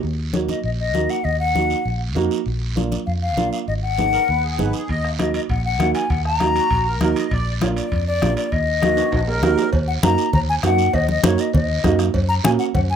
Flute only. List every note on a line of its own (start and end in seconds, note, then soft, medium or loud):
0.33 0.39 C#5 medium
0.49 0.63 D#5 medium
0.64 0.70 D#5 medium
0.80 1.12 D#5 medium
1.10 1.26 F#5 medium
1.24 1.39 D#5 medium
1.40 1.96 F#5 loud
2.76 2.82 D5 medium
2.91 2.97 D5 medium
3.06 3.12 F5 medium
3.22 3.50 F5 loud
3.52 3.58 F5 medium
3.68 3.74 D#5 medium
3.82 4.70 F#5 loud
5.20 5.34 D#5 medium
5.35 5.41 D#5 medium
5.50 5.64 F#5 medium
5.65 5.93 F#5 medium
5.95 6.12 G#5 medium
6.10 6.25 F#5 medium
6.25 7.12 A#5 loud
7.62 7.68 C#5 medium
7.76 8.05 D5 medium
8.08 8.35 D5 loud
8.37 8.54 D5 medium
8.52 9.43 D#5 loud
9.88 9.94 F#5 medium
10.03 10.31 A#5 loud
10.34 10.40 A#5 loud
10.49 10.55 G#5 loud
10.65 10.96 F#5 loud
10.94 11.09 D#5 medium
11.10 11.24 D#5 medium
11.25 11.42 C#5 medium
11.40 11.55 D#5 medium
11.55 11.97 D#5 medium
12.29 12.35 A#5 loud
12.45 12.51 G#5 loud
12.59 12.65 F#5 medium
12.75 12.81 F#5 medium
12.90 12.96 G#5 loud